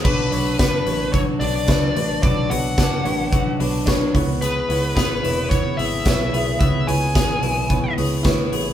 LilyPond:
<<
  \new Staff \with { instrumentName = "Lead electric guitar" } { \time 4/4 \key b \dorian \tempo 4 = 110 b'4 b'4 cis''8 d''4. | d''8 fis''2 r4. | b'4 b'4 cis''8 e''4. | e''8 gis''2 r4. | }
  \new Staff \with { instrumentName = "Upright piano" } { \time 4/4 \key b \dorian <d' b' cis''>8 <d' b' cis''>8 <d' b' cis''>8 <d' b' cis''>8 <d' b' cis''>8 <d' b' cis''>8 <d' b' cis''>8 <d' b' cis''>8 | <d' b' cis''>8 <d' b' cis''>8 <d' b' cis''>8 <d' b' cis''>8 <d' b' cis''>8 <d' b' cis''>8 <d' b' cis''>8 <e' b' cis''>8~ | <e' b' cis''>8 <e' b' cis''>8 <e' b' cis''>8 <e' b' cis''>8 <e' b' cis''>8 <e' b' cis''>8 <e' b' cis''>8 <e' b' cis''>8 | <e' b' cis''>8 <e' b' cis''>8 <e' b' cis''>8 <e' b' cis''>8 <e' b' cis''>8 <e' b' cis''>8 <e' b' cis''>8 <e' b' cis''>8 | }
  \new Staff \with { instrumentName = "Clean electric guitar" } { \time 4/4 \key b \dorian <fis d'>8 fis8 d'8 cis'8 fis8 d'4 d'8 | <fis d'>8 fis8 d'8 cis'8 fis8 d'8 cis'8 b8 | <b gis'>8 b8 gis'8 e'8 b8 gis'8 e'8 gis'8 | <b gis'>8 b8 gis'8 e'8 b8 gis'8 e'8 gis'8 | }
  \new Staff \with { instrumentName = "Picked electric bass" } { \clef bass \time 4/4 \key b \dorian b,,8 b,,8 fis,,8 a,,4 b,,8 cis,8 a,,8 | b,,8 b,,8 fis,,8 a,,4 b,,4 cis,8~ | cis,8 cis,8 gis,,8 e,,4 gis,,8 b,,8 b,,8 | cis,8 cis,8 gis,,8 b,,4 cis,8 d,8 a,,8 | }
  \new DrumStaff \with { instrumentName = "Drums" } \drummode { \time 4/4 <cymc bd>8 hho8 <hh bd sn>8 hho8 <hh bd>8 hho8 <hh bd sn>8 hho8 | <hh bd>8 hho8 <hh bd sn>8 hho8 <hh bd>8 hho8 <hh bd sn>8 <hho bd>8 | hh8 hho8 <hh bd sn>8 hho8 <hh bd>8 hho8 <hh bd sn>8 hho8 | <hh bd>8 hho8 <hh bd sn>8 hho8 <hh bd>8 hho8 <hh bd sn>8 hho8 | }
>>